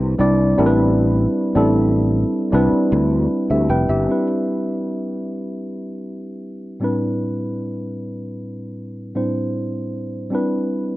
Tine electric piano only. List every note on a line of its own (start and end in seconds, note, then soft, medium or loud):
0.00 0.19 G3 medium
0.00 0.19 C4 medium
0.00 0.20 D4 medium
0.00 0.20 E4 medium
0.00 0.60 B4 loud
0.19 0.56 G3 medium
0.19 0.57 C4 medium
0.19 0.57 D4 medium
0.19 0.58 E4 medium
0.19 0.59 D5 loud
0.58 1.36 G3 medium
0.58 1.36 C4 medium
0.58 1.36 D4 medium
0.58 1.36 E4 medium
0.58 0.65 A#4 medium
0.66 1.40 B4 loud
1.55 2.51 G3 medium
1.55 2.52 C4 medium
1.55 2.52 D4 medium
1.55 2.53 E4 medium
1.55 2.54 A4 loud
2.52 3.15 G3 medium
2.52 3.15 C4 medium
2.52 3.15 D4 medium
2.52 3.16 E4 medium
2.52 3.16 B4 loud
3.51 3.69 G4 medium
3.51 3.69 E5 medium
3.70 3.89 B4 medium
3.70 3.88 G5 medium
3.90 4.27 G4 medium
3.90 4.26 E5 medium
4.07 6.77 G3 medium
4.07 6.77 C4 medium
4.07 6.78 D4 medium
4.07 6.78 E4 medium
4.11 6.79 B4 medium
6.80 9.10 A2 medium
6.80 9.11 G3 medium
6.80 9.11 C4 medium
6.80 9.12 D4 medium
6.80 9.12 E4 medium
6.84 9.12 B4 medium
9.15 10.32 A2 soft
9.15 10.29 G3 soft
9.15 10.30 C4 soft
9.15 10.31 D4 soft
9.15 10.33 E4 soft
9.15 10.33 C5 medium
10.31 10.97 G3 medium
10.31 10.97 C4 medium
10.31 10.97 D4 medium
10.31 10.97 E4 medium
10.35 10.97 B4 medium